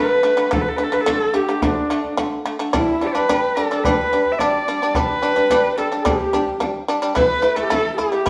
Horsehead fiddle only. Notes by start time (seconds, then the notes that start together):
Already playing: B4
0.53 A4
0.61 B4
0.69 A4
0.76 B4
0.84 A4
0.93 B4
1.01 A4
1.34 G4
1.63 D4
2.73 E4
3.06 D5
3.14 B4
3.55 A4
3.84 B4
4.32 E5
4.39 D5
4.96 B4
5.79 A4
5.99 A4
6.08 G4
7.15 B4
7.49 B4
7.55 A4
7.97 G4